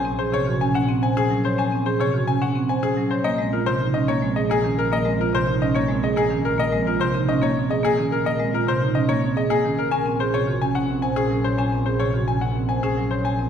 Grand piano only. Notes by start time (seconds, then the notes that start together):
0.19 C5
0.34 C#5
0.61 G#5
0.75 F#5
1.03 G#5
1.17 G#4
1.45 C5
1.59 G#5
1.86 C5
2.00 C#5
2.27 G#5
2.42 F#5
2.69 G#5
2.83 G#4
3.11 C5
3.24 D#5
3.53 A#4
3.66 C5
3.94 D#5
4.08 C#5
4.36 D#5
4.51 G#4
4.79 A#4
4.93 D#5
5.21 A#4
5.35 C5
5.62 D#5
5.75 C#5
6.04 D#5
6.17 G#4
6.45 A#4
6.60 D#5
6.87 A#4
7.01 C5
7.29 D#5
7.43 C#5
7.71 D#5
7.85 G#4
8.12 A#4
8.26 D#5
8.54 A#4
8.68 C5
8.95 D#5
9.09 C#5
9.37 D#5
9.50 G#4
9.79 A#4
9.91 G#5
10.20 C5
10.34 C#5
10.62 G#5
10.75 F#5
11.02 G#5
11.16 G#4
11.44 C5
11.58 G#5
11.86 C5
12.00 C#5
12.28 G#5
12.41 F#5
12.69 G#5
12.83 G#4
13.11 C5
13.25 G#5